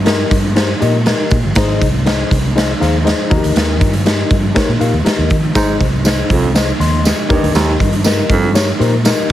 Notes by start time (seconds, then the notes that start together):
Already playing: G2
0.05 D#4 G4 A#4 D#5, snare, closed hi-hat
0.31 G2, kick, closed hi-hat
0.56 D#4 G4 A#4 C5, snare, closed hi-hat
0.80 A#2 D#4 G4 A#4 D#5, closed hi-hat
1.06 D#4 G4 A#4 D#5, snare, closed hi-hat
1.31 A#2, kick, closed hi-hat
1.45 G1
1.55 G#1 G#2 D#4 G#4 C5 D#5, kick, snare, closed hi-hat
1.82 C2, kick, closed hi-hat
2.06 D#4 G#4 C5 D#5, snare, closed hi-hat
2.31 C2, kick, closed hi-hat
2.56 D#4 G#4 C5 D#5, snare, closed hi-hat
2.80 D#2 D#4 G#4 C5 F5, snare, closed hi-hat
3.04 D#4 G#4 C5 D#5, snare, closed hi-hat
3.30 D#2 D#3 D#4 F#4 A#4 D#5, kick, closed hi-hat
3.37 G4
3.44 D2, closed hi-hat
3.55 D#2, snare, closed hi-hat
3.81 G2, kick, closed hi-hat
3.93 closed hi-hat
4.06 D#4 G4 A#4 D#5, snare, closed hi-hat
4.31 G2, kick, closed hi-hat
4.54 D#4 G4 A#4 C#5, kick, snare, closed hi-hat
4.68 A#2
4.79 A#2 D#4 G4 A#4 F5, closed hi-hat
4.93 D#2
5.05 D#4 G4 A#4 D#5, muted fingered electric bass stroke, snare, closed hi-hat
5.18 D#2
5.30 D#3, kick, closed hi-hat
5.55 G#1 G#2 D#4 G#4 C5 D#5, kick, snare, closed hi-hat, tambourine
5.81 C2, kick, closed hi-hat
6.05 D#4 G#4 C5 D#5, snare, closed hi-hat, tambourine
6.30 C2 F2, kick, closed hi-hat
6.54 D#4 G#4 C5 D#5, snare, closed hi-hat, tambourine
6.80 D#2 D#5 C6, snare, closed hi-hat
7.05 G4 D#5, snare, closed hi-hat, tambourine
7.29 D#2 G2 D#3 D#4 G4 A#4 C#5, kick, closed hi-hat
7.36 D#5
7.43 D2, closed hi-hat
7.54 D#2, snare, closed hi-hat, tambourine
7.80 G2, kick, closed hi-hat
7.93 closed hi-hat
8.04 D#4 G4 A#4 D#5, snare, closed hi-hat, tambourine
8.30 F2 G2, kick, closed hi-hat
8.54 D#4 G4 A#4 C#5, snare, closed hi-hat, tambourine
8.79 A#2 D#4 G4 A#4 C5, closed hi-hat
9.05 D#4 G4 A#4 D#5, snare, closed hi-hat, tambourine